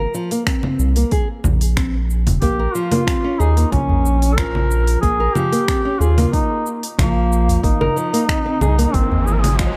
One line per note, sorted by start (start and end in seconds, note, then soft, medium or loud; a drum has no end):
0.00 0.13 A#4 medium
0.14 0.30 F3 medium
0.14 shaker medium
0.31 0.46 A#3 medium
0.31 open hi-hat soft
0.31 shaker soft
0.47 0.63 C4 medium
0.47 finger snap medium
0.47 kick loud
0.47 open hi-hat soft
0.47 shaker soft
0.63 0.95 C4 medium
0.63 low conga medium
0.79 1.04 C2 medium
0.79 shaker medium
0.96 1.10 A#3 medium
0.96 open hi-hat soft
0.96 shaker soft
1.11 1.27 G#4 medium
1.11 kick loud
1.11 open hi-hat soft
1.11 shaker soft
1.44 2.29 A#1 medium
1.44 low conga medium
1.44 udu medium
1.44 shaker medium
1.61 open hi-hat soft
1.61 shaker soft
1.77 1.93 C4 medium
1.77 finger snap medium
1.77 kick loud
1.77 open hi-hat soft
1.77 shaker soft
2.10 shaker medium
2.27 2.39 D#1 medium
2.27 open hi-hat medium
2.27 low conga medium
2.27 udu medium
2.27 shaker soft
2.42 2.67 A#1 loud
2.42 2.58 A#3 medium
2.42 2.75 G4 loud
2.42 kick medium
2.42 open hi-hat soft
2.42 shaker soft
2.59 2.74 A#4 medium
2.74 2.90 F3 medium
2.74 3.41 F4 loud
2.74 shaker medium
2.92 3.07 A#3 medium
2.92 open hi-hat soft
2.92 low conga medium
2.92 shaker soft
3.07 3.24 C4 medium
3.07 finger snap medium
3.07 kick loud
3.07 open hi-hat soft
3.07 shaker soft
3.24 3.38 C#4 medium
3.40 3.65 D#2 medium
3.40 3.71 D#4 medium
3.40 3.55 G#4 medium
3.40 shaker medium
3.57 4.21 A#3 medium
3.57 open hi-hat medium
3.57 shaker soft
3.72 4.97 A#1 loud
3.72 4.38 C#4 loud
3.72 kick loud
3.72 open hi-hat soft
3.72 low conga medium
3.72 shaker soft
3.89 udu medium
4.06 shaker medium
4.22 open hi-hat soft
4.22 shaker soft
4.36 5.01 F3 medium
4.36 5.01 A#4 loud
4.36 finger snap medium
4.36 kick loud
4.36 open hi-hat soft
4.36 shaker soft
4.55 low conga medium
4.71 shaker medium
4.87 open hi-hat soft
4.87 shaker soft
5.01 5.28 A#1 loud
5.01 5.18 A#3 medium
5.01 5.36 G#4 loud
5.01 kick medium
5.01 open hi-hat soft
5.01 shaker soft
5.20 5.35 A#4 medium
5.35 5.51 F3 medium
5.35 6.01 G4 loud
5.35 low conga medium
5.35 shaker medium
5.52 5.67 A#3 medium
5.52 open hi-hat soft
5.52 shaker soft
5.68 5.84 C4 medium
5.68 finger snap medium
5.68 kick medium
5.68 open hi-hat soft
5.68 shaker soft
5.85 5.99 C#4 medium
5.99 6.26 D#2 medium
5.99 6.32 F4 loud
5.99 6.16 G#4 medium
5.99 shaker medium
6.18 6.81 A#3 medium
6.18 open hi-hat medium
6.18 low conga medium
6.18 shaker soft
6.32 6.69 D#4 loud
6.32 kick medium
6.32 open hi-hat soft
6.32 shaker soft
6.66 shaker medium
6.83 open hi-hat medium
6.83 shaker soft
6.97 7.58 A#1 medium
6.97 7.62 F3 medium
6.97 7.59 A#3 medium
6.97 finger snap medium
6.97 kick loud
6.97 open hi-hat soft
6.97 low conga medium
6.97 shaker soft
7.32 shaker medium
7.49 open hi-hat medium
7.49 udu medium
7.49 shaker soft
7.63 7.89 G#1 medium
7.63 7.79 A#3 medium
7.63 8.95 D#4 loud
7.63 kick medium
7.63 open hi-hat soft
7.63 riser medium
7.63 shaker soft
7.81 7.96 A#4 medium
7.81 low conga medium
7.96 8.12 F3 medium
7.96 shaker medium
8.13 8.28 A#3 medium
8.13 open hi-hat medium
8.13 shaker soft
8.29 8.44 C4 medium
8.29 finger snap loud
8.29 kick medium
8.29 open hi-hat soft
8.29 shaker soft
8.46 8.60 C4 medium
8.61 8.87 C2 medium
8.61 8.77 G#4 medium
8.61 low conga medium
8.61 shaker medium
8.78 9.42 A#3 medium
8.78 open hi-hat medium
8.78 shaker soft
8.94 9.77 G#1 loud
8.94 9.28 C4 loud
8.94 kick medium
8.94 open hi-hat soft
8.94 shaker soft
9.12 udu medium
9.26 9.35 G#4 medium
9.26 shaker medium
9.34 9.42 A#4 medium
9.40 9.60 G#4 medium
9.40 open hi-hat medium
9.40 low conga medium
9.45 shaker soft
9.59 9.77 F3 medium
9.59 9.77 G#3 medium
9.59 finger snap medium
9.59 kick medium
9.59 open hi-hat soft
9.59 shaker soft